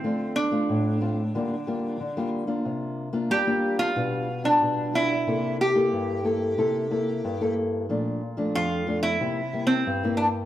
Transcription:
<<
  \new Staff \with { instrumentName = "Resonator guitar played with a steel bar" } { \time 4/4 \key c \mixolydian \tempo 4 = 92 c'8 d'2. r8 | r4 g'8. f'4 d'8. e'8~ | e'8 g'2. r8 | r4 f'8. e'4 c'8. d'8 | }
  \new Staff \with { instrumentName = "Nylon-string guitar" } { \time 4/4 \key c \mixolydian << { <a c' f'>8 r16 <a c' f'>8. <a c' f'>16 r16 <g bes f'>16 r16 <g bes f'>8 r16 <g bes f'>8 <bes d' f'>16~ | <bes d' f'>8. <bes d' f'>8 <bes d' f'>8. <g d' f'>8 r16 <g d' f'>8. <g d' f'>16 r16 | <bes e' a'>8. <bes e' a'>8. <bes e' a'>8 <bes e' a'>8 <bes e' a'>8. <bes e' a'>8. | <f a d'>8 r16 <f a d'>8. <f a d'>16 r16 <g bes e'>16 r16 <g bes e'>8 r16 <g bes e'>8. | } \\ { d4 a,4 d4 d4 | c4 g4 b,4 b,4 | c4 g,4 c4 g,4 | bes,4 f,4 c4 g,4 | } >> }
>>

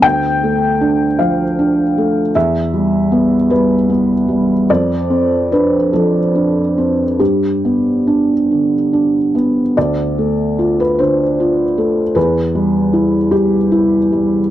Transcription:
<<
  \new Staff \with { instrumentName = "Felt piano" } { \time 6/8 \key d \dorian \tempo 4. = 50 g''4. f''4. | e''4. b'8 r4 | d''4 b'8 a'4. | g'2~ g'8 r8 |
d''4~ d''16 b'16 c''4. | b'4. g'4. | }
  \new Staff \with { instrumentName = "Felt piano" } { \time 6/8 \key d \dorian d,8 a8 d'8 f8 d'8 a8 | e,8 g8 b8 g8 b8 g8 | f,8 c'8 d'8 f8 d'8 c'8 | g,8 b8 d'8 d8 d'8 b8 |
d,8 a8 f'8 d8 f'8 a8 | e,8 g8 e'8 g8 e'8 g8 | }
>>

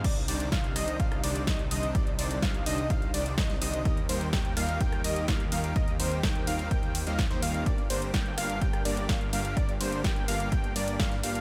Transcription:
<<
  \new Staff \with { instrumentName = "Analog synth lead" } { \time 4/4 \key c \minor \tempo 4 = 126 d''16 r16 d''8 f''8 ees''8 f''8 d''8 ees''16 r16 ees''8 | d''16 r16 d''8 f''8 ees''8 f''8 d''8 ees''16 r16 ees''8 | ees''16 r16 c''8 g''8 f''8 g''8 ees''8 f''16 r16 f''8 | ees''16 r16 c''8 g''8 f''8 g''8 r16 f''16 r16 c''16 f''8 |
d''16 r16 c''8 g''8 f''8 g''8 d''8 f''16 r16 f''8 | d''16 r16 c''8 g''8 f''8 g''8 d''8 f''16 r16 f''8 | }
  \new Staff \with { instrumentName = "Supersaw synth" } { \time 4/4 \key c \minor <g d' ees' c'' d''>16 r16 <g d' ees' c'' d''>8 <g d' ees' c'' f''>8 <g d' ees' c'' ees''>8 <g d' ees' c'' f''>8 <g d' ees' c'' d''>8 <g d' ees' c'' ees''>16 r16 <g d' ees' c'' ees''>8 | <g d' ees' c'' d''>16 r16 <g d' ees' c'' d''>8 <g d' ees' c'' f''>8 <g d' ees' c'' ees''>8 <g d' ees' c'' f''>8 <g d' ees' c'' d''>8 <g d' ees' c'' ees''>16 r16 <g d' ees' c'' ees''>8 | <g bes ees' bes' ees''>16 r16 <g bes ees' bes' c''>8 <g bes ees' bes' g''>8 <g bes ees' bes' f''>8 <g bes ees' bes' g''>8 <g bes ees' bes' ees''>8 <g bes ees' bes' f''>16 r16 <g bes ees' bes' f''>8 | <g bes ees' bes' ees''>16 r16 <g bes ees' bes' c''>8 <bes ees' bes' g''>8 <g bes ees' bes' f''>8 <g bes ees' bes' g''>8 r16 <g bes ees' bes' f''>16 r16 <g bes ees' bes' c''>16 <g bes ees' bes' f''>8 |
<g bes d' bes' d''>16 r16 <g bes d' bes' c''>8 <g bes d' bes' g''>8 <g bes d' bes' f''>8 <g bes d' bes' g''>8 <g bes d' bes' d''>8 <g bes d' bes' f''>16 r16 <g bes d' bes' f''>8 | <g bes d' bes' d''>16 r16 <g bes d' bes' c''>8 <g bes d' bes' g''>8 <g bes d' bes' f''>8 <g bes d' bes' g''>8 <g bes d' bes' d''>8 <g bes d' f''>16 r16 <g bes d' bes' f''>8 | }
  \new Staff \with { instrumentName = "Analog synth pad" } { \time 4/4 \key c \minor << { <d ees>1~ | <d ees>1 | <ees g'>1~ | <ees g'>1 |
<d g'>1~ | <d g'>1 | } \\ { c'1~ | c'1 | bes1 | c'1 |
bes1~ | bes1 | } >> }
  \new Staff \with { instrumentName = "Detuned saw bass" } { \clef bass \time 4/4 \key c \minor c,8 c,8 c,8 c,8 c,8 c,8 c,8 c,8 | c,8 c,8 c,8 c,8 c,8 c,8 c,8 c,8 | ees,8 ees,8 ees,8 ees,8 ees,8 ees,8 ees,8 ees,8 | ees,8 ees,8 ees,8 ees,8 ees,8. ees,8 ees,16 ees,8 |
g,,8 g,,8 g,,8 g,,8 g,,8 g,,8 g,,8 g,,8 | g,,8 g,,8 g,,8 g,,8 g,,8 g,,8 g,8 g,,8 | }
  \new DrumStaff \with { instrumentName = "Drums" } \drummode { \time 4/4 <cymc hh bd>16 hh16 <hho cymr>16 hh16 <hh bd sn>16 hh16 <hho cymr ss>16 hh16 <hh bd>16 <hh ss>16 <hho cymr>16 hh16 <hh bd sn>16 hh16 <hho cymr>16 hh16 | <hh bd>16 hh16 <hho cymr>16 hh16 <hh bd sn>16 hh16 <hho cymr>16 hh16 <hh bd>16 hh16 <hho cymr>16 hh16 <hh bd sn>16 <hh sn>16 <hho cymr>16 hh16 | <hh bd>16 hh16 <hho cymr>16 hh16 <hh bd sn>16 hh16 <hho cymr ss>16 hh16 <hh bd>16 <hh ss>16 <hho cymr>16 hh16 <hh bd sn>16 hh16 <hho cymr>16 hh16 | <hh bd>16 hh16 <hho cymr>16 hh16 <hh bd sn>16 hh16 <hho cymr>16 hh16 <hh bd>16 hh16 <hho cymr>16 hh16 <hh bd sn>16 <hh sn>16 <hho cymr>16 hh16 |
<hh bd>16 hh16 <hho cymr>16 hh16 <hh bd sn>16 hh16 <hho cymr ss>16 hh16 <hh bd>16 <hh ss>16 <hho cymr>16 hh16 <hh bd sn>16 hh16 <hho cymr>16 hh16 | <hh bd>16 hh16 <hho cymr>16 hh16 <hh bd sn>16 hh16 <hho cymr>16 hh16 <hh bd>16 hh16 <hho cymr>16 hh16 <hh bd sn>16 <hh sn>16 <hho cymr>16 hh16 | }
>>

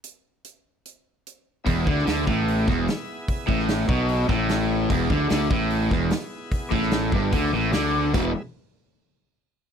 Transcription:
<<
  \new Staff \with { instrumentName = "Tonewheel organ" } { \time 4/4 \key e \mixolydian \tempo 4 = 148 r1 | <b e' gis' e''>1~ | <b e' gis' e''>1 | <b e' gis'>1~ |
<b e' gis'>1 | <b e' gis' e''>8 r2. r8 | }
  \new Staff \with { instrumentName = "Overdriven electric guitar" } { \clef bass \time 4/4 \key e \mixolydian r1 | e,8 d8 d8 a,4 e,8 r4 | r8 a,4 b,4 a,4. | e,8 d8 d8 a,4 e,8 r4 |
r8 a,4 g,8 d8 a,8 d4 | <e, b, e>8 r2. r8 | }
  \new Staff \with { instrumentName = "Overdriven electric guitar" } { \clef bass \time 4/4 \key e \mixolydian r1 | e,8 d8 d8 a,4 e,8 r4 | r8 a,4 b,4 r4. | e,8 d8 d8 a,4 e,8 r4 |
r8 a,4 g,8 d8 a,8 d4 | <e, b, e>8 r2. r8 | }
  \new Staff \with { instrumentName = "Fingered electric bass" } { \clef bass \time 4/4 \key e \mixolydian r1 | e,,8 d,8 d,8 a,,4 e,,8 r4 | r8 a,,4 b,,4 a,,4. | e,,8 d,8 d,8 a,,4 e,,8 r4 |
r8 a,,4 g,,8 d,8 a,,8 d,4 | e,,8 r2. r8 | }
  \new DrumStaff \with { instrumentName = "Drums" } \drummode { \time 4/4 hh4 hh4 hh4 hh4 | <hho bd>8 bd16 sn16 <hho sn>8 bd8 hho8 <bd sn>8 <hho sn>4 | <hho bd>8 bd16 sn16 <hho sn>8 bd8 hho8 <bd sn>8 <hho sn>4 | <hho bd>8 bd8 <hho sn>8 bd8 hho8 <bd sn>8 <hho sn>4 |
<hho bd>8 bd16 sn16 <hho sn>8 bd8 <hho bd>4 <hho sn>4 | <cymc bd>4 r4 r4 r4 | }
>>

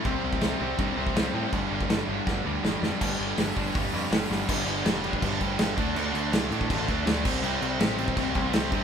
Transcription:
<<
  \new Staff \with { instrumentName = "Distorted electric guitar" } { \clef bass \time 4/4 \key g \mixolydian \tempo 4 = 163 <c g c'>8 <c g c'>8 <c g c'>8 <c g c'>8 <c g c'>8 <c g c'>8 <c g c'>8 <c g c'>8 | <g, d g>8 <g, d g>8 <g, d g>8 <g, d g>8 <g, d g>8 <g, d g>8 <g, d g>8 <g, d g>8 | <g, d g>8 <g, d g>8 <g, d g>8 <g, d g>8 <g, d g>8 <g, d g>8 <g, d g>8 <g, d g>8 | <g, d g>8 <g, d g>8 <g, d g>8 <g, d g>8 <g, d g>8 <g, d g>8 <g, d g>8 <d a d'>8 |
<d a d'>8 <d a d'>8 <d a d'>8 <d a d'>8 <d a d'>8 <d a d'>8 <d a d'>8 <c g c'>8 | <c g c'>8 <c g c'>8 <c g c'>8 <c g c'>8 <c g c'>8 <c g c'>8 <c g c'>8 <c g c'>8 | }
  \new Staff \with { instrumentName = "Overdriven electric guitar" } { \clef bass \time 4/4 \key g \mixolydian <c g c'>8 <c g c'>8 <c g c'>8 <c g c'>8 <c g c'>8 <c g c'>8 <c g c'>8 <c g c'>8 | <g, d g>8 <g, d g>8 <g, d g>8 <g, d g>8 <g, d g>8 <g, d g>8 <g, d g>8 <g, d g>8 | <g, d g>8 <g, d g>8 <g, d g>8 <g, d g>8 <g, d g>8 <g, d g>8 <g, d g>8 <g, d g>8 | <g, d g>8 <g, d g>8 <g, d g>8 <g, d g>8 <g, d g>8 <g, d g>8 <g, d g>8 <d a d'>8 |
<d a d'>8 <d a d'>8 <d a d'>8 <d a d'>8 <d a d'>8 <d a d'>8 <d a d'>8 <c g c'>8 | <c g c'>8 <c g c'>8 <c g c'>8 <c g c'>8 <c g c'>8 <c g c'>8 <c g c'>8 <c g c'>8 | }
  \new Staff \with { instrumentName = "Picked electric bass" } { \clef bass \time 4/4 \key g \mixolydian c,8 c,8 c,8 c,8 g,8 c,8 c,8 a,8 | g,,8 g,,8 g,,8 g,,8 g,,8 d,8 g,,8 f,8 | g,,8 g,,8 g,,8 g,,8 g,,8 f,8 g,,8 g,,8 | g,,8 g,,8 f,,4 g,,8 g,,8 g,,8 d,8 |
d,8 d,8 c,8 a,8 a,,8 d,8 d,8 c,8 | c,8 c,8 a,,4 c,8 c,8 c,8 g,8 | }
  \new DrumStaff \with { instrumentName = "Drums" } \drummode { \time 4/4 <cymc bd>8. bd16 <cymc sn>4 <cymc bd>8. bd16 <cymc sn>4 | <cymc bd>8. bd16 <cymc sn>4 <bd sn>4 sn8 sn8 | <cymc bd>4 <hho sn>8 bd8 <hho bd>4 <hho sn>8 sn8 | <cymc bd>8 cymc8 <cymc sn>8 cymc16 bd16 <cymc bd>8 <cymc bd>8 <cymc sn>8 <cymc bd>8 |
cymc8 cymc8 <cymc sn>8 cymc16 bd16 <cymc bd>8 <cymc bd>8 <cymc sn>8 <cymc bd>8 | cymc8 cymc8 <cymc sn>8 cymc16 bd16 <cymc bd>8 <cymc bd>8 <cymc sn>8 <cymc bd>8 | }
>>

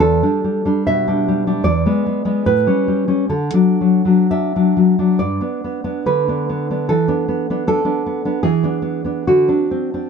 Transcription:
\new Staff \with { instrumentName = "Nylon-string guitar" } { \time 2/4 \key e \minor \tempo 4 = 72 << { a'4 e''4 | d''4 b'4 | a'4 e''4 | d''4 b'4 |
a'4 a'4 | aes'4 fis'4 | } \\ { e,16 <g d'>16 g16 <g d'>16 b,16 <g d'>16 g16 <g d'>16 | e,16 <gis b>16 gis16 <gis b>16 a,16 <g cis'>16 g16 <g cis'>16 | d16 <fis d'>16 fis16 <fis d'>16 d'16 <fis d'>16 fis16 <fis d'>16 | g,16 <b d'>16 b16 <b d'>16 d16 <b d'>16 b16 <b d'>16 |
e16 <b d'>16 b16 <b d'>16 d'16 <b d'>16 b16 <b d'>16 | e16 <b d'>16 b16 <b d'>16 d16 <c' d'>16 c'16 <c' d'>16 | } >> }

